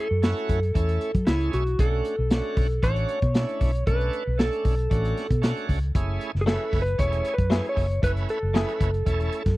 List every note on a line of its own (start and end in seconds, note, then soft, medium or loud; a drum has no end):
0.00 1.31 A4 medium
0.11 0.32 F#2 medium
0.22 0.59 A3 medium
0.22 0.59 C#4 medium
0.22 0.60 E4 medium
0.22 0.60 F#4 medium
0.22 snare loud
0.22 closed hi-hat medium
0.37 closed hi-hat soft
0.49 0.71 F#2 medium
0.49 kick medium
0.49 closed hi-hat medium
0.63 closed hi-hat soft
0.74 0.97 E2 medium
0.74 1.11 A3 medium
0.74 1.11 C#4 medium
0.74 1.12 E4 medium
0.74 1.12 A4 medium
0.74 kick medium
0.74 closed hi-hat medium
0.89 closed hi-hat soft
1.01 closed hi-hat medium
1.14 1.25 F#3 medium
1.14 kick medium
1.14 closed hi-hat soft
1.26 1.51 C#2 medium
1.26 1.63 A3 medium
1.26 1.63 C#4 medium
1.26 1.53 E4 medium
1.26 1.64 E4 medium
1.26 1.64 G#4 medium
1.26 snare loud
1.26 closed hi-hat medium
1.40 closed hi-hat soft
1.53 1.77 B1 medium
1.53 1.78 F#4 medium
1.53 closed hi-hat medium
1.67 closed hi-hat soft
1.79 2.01 B1 medium
1.79 2.15 A3 medium
1.79 2.16 C#4 medium
1.79 2.16 D4 medium
1.79 2.16 F#4 medium
1.79 2.87 A4 medium
1.79 kick loud
1.79 closed hi-hat medium
2.05 closed hi-hat medium
2.19 2.40 B1 medium
2.30 2.67 A3 medium
2.30 2.67 C#4 medium
2.30 2.67 D4 medium
2.30 2.68 F#4 medium
2.30 snare loud
2.30 closed hi-hat medium
2.57 2.78 B1 medium
2.57 kick medium
2.57 open hi-hat medium
2.70 closed hi-hat soft
2.82 3.04 A1 medium
2.82 3.19 A3 medium
2.82 3.19 C#4 medium
2.82 3.20 D4 medium
2.82 3.20 F#4 medium
2.82 3.83 C#5 medium
2.82 kick medium
2.82 closed hi-hat medium
2.96 closed hi-hat soft
3.08 closed hi-hat medium
3.22 3.44 B2 medium
3.22 kick medium
3.22 closed hi-hat soft
3.34 3.71 A3 medium
3.34 3.71 C#4 medium
3.34 3.71 D4 medium
3.34 3.72 E4 medium
3.34 snare medium
3.34 closed hi-hat medium
3.48 closed hi-hat soft
3.61 3.82 B1 medium
3.61 kick medium
3.61 open hi-hat medium
3.75 closed hi-hat soft
3.87 4.09 B1 medium
3.87 4.23 A3 medium
3.87 4.23 C#4 medium
3.87 4.24 D4 medium
3.87 4.24 A4 medium
3.87 4.41 B4 medium
3.87 kick medium
3.87 closed hi-hat medium
4.01 closed hi-hat soft
4.13 closed hi-hat medium
4.27 4.48 B1 medium
4.38 4.75 A3 medium
4.38 4.75 C#4 medium
4.38 4.75 D4 medium
4.38 5.65 A4 medium
4.38 4.76 A4 medium
4.38 snare loud
4.38 closed hi-hat medium
4.53 closed hi-hat soft
4.65 4.87 B1 loud
4.65 kick medium
4.65 open hi-hat medium
4.79 closed hi-hat soft
4.90 5.12 A1 medium
4.90 5.27 A3 medium
4.90 5.27 C#4 medium
4.90 5.27 D4 medium
4.90 5.27 F#4 medium
4.90 kick medium
4.90 closed hi-hat medium
5.05 closed hi-hat soft
5.17 snare soft
5.17 closed hi-hat medium
5.31 5.52 B2 medium
5.31 kick medium
5.31 closed hi-hat soft
5.42 5.79 A3 medium
5.42 5.79 C#4 medium
5.42 5.79 D4 medium
5.42 5.79 F#4 medium
5.42 snare loud
5.42 closed hi-hat medium
5.57 closed hi-hat soft
5.69 5.90 C#2 medium
5.69 kick medium
5.69 open hi-hat medium
5.83 closed hi-hat soft
5.95 6.16 F#1 medium
5.95 6.31 A3 medium
5.95 6.31 C#4 medium
5.95 6.32 E4 medium
5.95 6.32 G#4 medium
5.95 kick medium
5.95 closed hi-hat medium
6.21 closed hi-hat medium
6.35 6.56 F#1 medium
6.35 snare soft
6.41 6.47 G#4 medium
6.46 6.63 F#3 medium
6.46 6.83 A3 medium
6.46 6.63 A3 medium
6.46 6.83 C#4 medium
6.46 6.83 E4 medium
6.46 6.64 E4 medium
6.46 6.64 G#4 medium
6.46 6.79 A4 medium
6.46 6.84 B4 medium
6.46 snare loud
6.46 closed hi-hat medium
6.73 6.94 F#1 medium
6.73 kick medium
6.73 open hi-hat medium
6.82 7.00 B4 medium
6.86 closed hi-hat soft
6.98 7.20 E1 medium
6.98 7.35 A3 medium
6.98 7.35 C#4 medium
6.98 7.35 E4 medium
6.98 7.36 G#4 medium
6.98 7.34 C#5 medium
6.98 kick medium
6.98 closed hi-hat medium
7.13 closed hi-hat soft
7.25 closed hi-hat medium
7.34 7.66 B4 medium
7.38 7.60 F#2 medium
7.38 kick medium
7.38 closed hi-hat soft
7.50 7.67 F#3 medium
7.50 7.86 A3 medium
7.50 7.67 A3 medium
7.50 7.87 C#4 medium
7.50 7.87 E4 medium
7.50 7.67 E4 medium
7.50 7.87 G#4 medium
7.50 7.68 G#4 medium
7.50 snare loud
7.50 closed hi-hat medium
7.65 closed hi-hat soft
7.69 8.03 C#5 medium
7.77 7.98 F#1 medium
7.77 kick medium
7.77 open hi-hat medium
7.91 closed hi-hat soft
8.02 8.24 F#1 medium
8.02 8.39 A3 medium
8.02 8.39 C#4 medium
8.02 8.39 E4 medium
8.02 8.39 B4 medium
8.02 8.11 B4 medium
8.02 kick medium
8.02 closed hi-hat medium
8.17 closed hi-hat soft
8.29 9.57 A4 medium
8.29 closed hi-hat soft
8.43 8.64 F#1 medium
8.53 8.71 F#3 medium
8.53 8.90 A3 medium
8.53 8.71 A3 medium
8.53 8.91 C#4 medium
8.53 8.91 E4 medium
8.53 8.72 E4 medium
8.53 8.72 G#4 medium
8.53 8.91 B4 medium
8.53 snare loud
8.53 closed hi-hat medium
8.68 closed hi-hat soft
8.80 9.02 F#1 medium
8.80 kick medium
8.80 closed hi-hat medium
8.94 closed hi-hat soft
9.05 9.28 E1 medium
9.05 9.42 A3 medium
9.05 9.43 C#4 medium
9.05 9.43 E4 medium
9.05 9.43 A4 medium
9.05 kick medium
9.05 closed hi-hat medium
9.20 closed hi-hat soft
9.32 closed hi-hat medium
9.46 9.57 F#2 medium
9.46 kick medium
9.46 snare soft
9.46 closed hi-hat soft